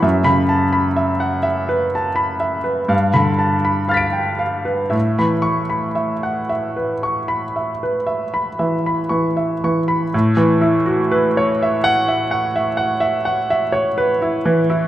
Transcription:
0.02 F#2 E5
0.24 C#3 B5
0.49 A5
0.73 B5
0.96 E5
1.20 F#5
1.43 E5
1.69 B4
1.95 A5
2.16 B5
2.40 E5
2.64 B4
2.88 G2 F5
3.14 D3 B5
3.39 A5
3.65 B5
3.88 F5 F6 A6
3.94 B6 D7
4.13 G5
4.39 F5
4.65 B4
4.90 A2 E5
5.19 E3 B5
5.42 C#6
5.70 B5
5.95 E5
6.23 F#5
6.49 E5
6.76 B4
7.03 C#6
7.28 B5
7.56 E5
7.83 B4
8.07 E5
8.34 B5
8.59 E3 E5
8.86 B5
9.09 E3 C#6
9.37 E5
9.64 E3 C#6
9.88 B5
10.14 A2
10.37 E3
10.61 E4
10.86 F#4
11.11 B4
11.37 C#5
11.62 E5
11.84 F#5
12.08 E5
12.31 F#5
12.56 E5
12.77 F#5
13.00 E5
13.25 F#5
13.50 E5
13.72 C#5
13.98 B4
14.22 E4
14.45 E3
14.70 E4

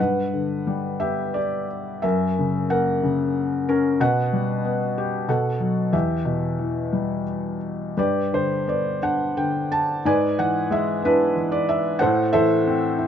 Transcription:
0.00 G2 B4 F#5
0.33 D3
0.67 G3
1.00 B3 G4 E5
1.34 G4 D5
2.02 F#2 A#4 E5
2.39 C#3
2.70 A#3 A#4 F#5
3.03 C#3
3.69 C#4 A#4
4.00 B2 B4 F#5
4.33 G3
4.65 B3
4.98 G4
5.28 B2 A4 F#5
5.60 F#3
5.93 E2 G4 E5
6.25 B2
6.59 E3
6.93 G3
7.97 G2 G4 B4 D5
8.33 D3 C5
8.67 B3 D5
9.02 D4 F#5
9.37 D3 G5
9.72 A5
10.05 G#2 B4 D5 G#5
10.38 E3 F#5
10.70 G#3 E5
11.02 B3 D4 E4 B4
11.36 E3
11.52 D5
11.69 E5
11.99 A2 A4 C5 F#5
12.33 E3 A4 C5 E5
12.67 C4
12.98 E4

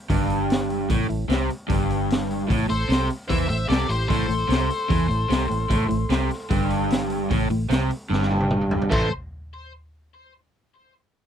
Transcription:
0.10 G1 G2, kick, open hi-hat
0.30 open hi-hat
0.50 snare, open hi-hat
0.70 open hi-hat
0.89 A1 A2, kick, open hi-hat
1.09 A1 A2, open hi-hat
1.29 C2 C3, snare, open hi-hat
1.50 open hi-hat
1.68 G1 G2, kick, open hi-hat
1.90 open hi-hat
2.10 snare, open hi-hat
2.31 open hi-hat
2.48 A1 A2, kick, open hi-hat
2.69 A1 A2 A4 C5, open hi-hat
2.89 C2 C3, snare, open hi-hat
3.10 open hi-hat
3.28 E2 E3 C5 E5, kick, open hi-hat
3.49 A1 A2 C5 E5, open hi-hat
3.68 C2 C3 A4 D5, snare, open hi-hat
3.89 A1 A2 G4 C5, open hi-hat
4.08 A1 A2 A4 C5, kick, open hi-hat
4.28 A1 A2, open hi-hat
4.49 C2 C3, snare, open hi-hat
4.70 open hi-hat
4.89 E2 E3, kick, open hi-hat
5.09 A1 A2, open hi-hat
5.29 C2 C3, snare, open hi-hat
5.49 A1 A2, open hi-hat
5.70 A1 A2, kick, open hi-hat
5.89 A1 A2, open hi-hat
6.09 C2 C3, snare, open hi-hat
6.31 snare, open hi-hat
6.50 G1 G2, kick, open hi-hat
6.70 open hi-hat
6.90 snare, open hi-hat
7.10 open hi-hat
7.30 A1 A2, kick, open hi-hat
7.50 A1 A2, open hi-hat
7.69 C2 C3, snare, open hi-hat
7.91 open hi-hat
8.10 G1 G2, snare
8.22 snare
8.31 high tom
8.40 high tom
8.51 mid tom
8.61 mid tom
8.71 floor tom
8.82 floor tom
8.90 A1 A2 E3 A3 A4 C5, kick, crash

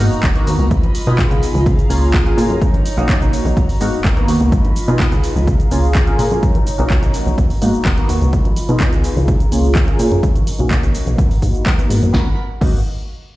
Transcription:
Already playing: F#4 A#5
0.00 A#3 B3 D#4 F#4, tambourine
0.12 F#1, tambourine, shaker
0.23 F#1, kick, clap, closed hi-hat, tambourine, high conga, shaker
0.35 A#3 B3 D#4 F#4, closed hi-hat
0.46 D#2, open hi-hat, tambourine, shaker
0.59 C#2, closed hi-hat, tambourine, shaker
0.71 C#2 F4 D#5 B5, kick, closed hi-hat, shaker
0.83 closed hi-hat, high conga, low conga
0.95 open hi-hat, tambourine, shaker
1.07 B2 B3 D#4 F4 G#4, tambourine, shaker
1.19 kick, clap, closed hi-hat, shaker
1.31 C#2, closed hi-hat, shaker
1.41 open hi-hat, tambourine, shaker
1.54 C#2, tambourine, high conga, shaker
1.66 C#3 G#4 F5 A#5, kick, closed hi-hat, shaker
1.79 closed hi-hat, shaker
1.90 C#2 A#3 C#4 F4 G#4, open hi-hat, tambourine, shaker
2.02 tambourine, shaker
2.14 kick, clap, closed hi-hat, tambourine, high conga, shaker
2.26 A#3 C#4 F4 G#4, closed hi-hat
2.37 A#2, open hi-hat, tambourine, shaker
2.50 F#2, closed hi-hat, tambourine, shaker
2.62 D#4 C#5, kick, closed hi-hat, shaker
2.73 closed hi-hat, high conga, low conga
2.85 open hi-hat, tambourine, shaker
2.97 B1 A#3 C#4 D#4 F#4, closed hi-hat, tambourine, shaker
3.09 kick, clap, closed hi-hat, shaker
3.21 B1, closed hi-hat, shaker
3.33 B1, open hi-hat, tambourine, shaker
3.45 B1, tambourine, high conga, shaker
3.57 G#1 F#4, kick, closed hi-hat, shaker
3.69 open hi-hat, shaker
3.80 G#2 A#3 B3 D#4 F#4, open hi-hat, tambourine, shaker
3.93 F#1, tambourine, shaker
4.04 F#1, kick, clap, closed hi-hat, tambourine, high conga, shaker
4.17 A#3 B3 D#4 F#4, closed hi-hat
4.28 D#2, open hi-hat, tambourine, shaker
4.40 C#2, closed hi-hat, shaker
4.52 C#2 F4 D#5 B5, kick, closed hi-hat, tambourine, shaker
4.64 closed hi-hat, high conga, low conga
4.76 open hi-hat, tambourine, shaker
4.88 B2 B3 D#4 F4 G#4, closed hi-hat, tambourine, shaker
5.00 kick, clap, closed hi-hat, shaker
5.12 C#2, closed hi-hat, shaker
5.24 open hi-hat, tambourine, shaker
5.36 C#2, tambourine, high conga, shaker
5.47 C#3 G#4 F5 A#5, kick, closed hi-hat, shaker
5.60 closed hi-hat, shaker
5.71 C#2 A#3 C#4 F4 G#4, open hi-hat, tambourine, shaker
5.84 shaker
5.95 kick, clap, closed hi-hat, tambourine, high conga, shaker
6.07 A#3 C#4 F4 G#4, closed hi-hat
6.19 A#2, open hi-hat, tambourine, shaker
6.31 F#2, closed hi-hat, tambourine, shaker
6.43 D#4 C#5, kick, closed hi-hat, tambourine, shaker
6.55 closed hi-hat, high conga, low conga
6.67 open hi-hat, tambourine, shaker
6.78 B1 A#3 C#4 D#4 F#4, closed hi-hat, tambourine, shaker
6.90 kick, clap, closed hi-hat, shaker
7.02 B1, closed hi-hat, shaker
7.14 B1, open hi-hat, shaker
7.26 B1, tambourine, high conga, shaker
7.38 G#1 F#4, kick, closed hi-hat, tambourine, shaker
7.50 open hi-hat, shaker
7.61 G#2 A#3 B3 D#4 F#4, open hi-hat, tambourine, shaker
7.74 F#1, tambourine, shaker
7.85 F#1, kick, clap, closed hi-hat, tambourine, high conga, shaker
7.98 A#3 B3 D#4 F#4, closed hi-hat
8.09 D#2, open hi-hat, shaker
8.21 C#2, closed hi-hat, shaker
8.33 C#2 F4 D#5 B5, kick, closed hi-hat, shaker
8.44 closed hi-hat, high conga, low conga
8.56 open hi-hat, tambourine, shaker
8.69 B2 B3 D#4 F4 G#4, closed hi-hat, shaker
8.80 kick, clap, closed hi-hat, shaker
8.93 C#2, closed hi-hat, shaker
9.04 open hi-hat, tambourine, shaker
9.16 C#2, tambourine, high conga, shaker
9.28 C#3 G#4 F5 A#5, kick, closed hi-hat, shaker
9.40 closed hi-hat, shaker
9.52 C#2 A#3 C#4 F4 G#4, open hi-hat, shaker
9.64 shaker
9.75 kick, clap, closed hi-hat, tambourine, high conga, shaker
9.88 A#3 C#4 F4 G#4, closed hi-hat
9.99 A#2, open hi-hat, shaker
10.12 F#2, closed hi-hat, shaker
10.23 A#4 D#5 C#6, kick, closed hi-hat, shaker
10.34 closed hi-hat, high conga, low conga, shaker
10.46 open hi-hat, tambourine, shaker
10.58 B1 A#3 C#4 D#4 F#4, closed hi-hat, tambourine, shaker
10.71 kick, clap, closed hi-hat, shaker
10.83 B1, closed hi-hat, shaker
10.95 open hi-hat, shaker
11.06 B1, closed hi-hat, tambourine, high conga, shaker
11.18 G#1 F#5 A#5 B5, kick, closed hi-hat, shaker
11.31 open hi-hat, shaker
11.42 G#2 A#3 B3 D#4 F#4, kick, open hi-hat, shaker
11.55 closed hi-hat, shaker
11.66 kick, clap, closed hi-hat, tambourine, high conga, shaker
11.79 A#3 B3 D#4 F#4, closed hi-hat, shaker
11.90 G#2, open hi-hat, shaker
12.02 F#2, closed hi-hat, shaker
12.13 G#1 A#3 B3 D#4 F#4 A#4 F#5 B5, kick, snare
12.61 G#1 A#3 B3 D#4 F#4, kick, crash

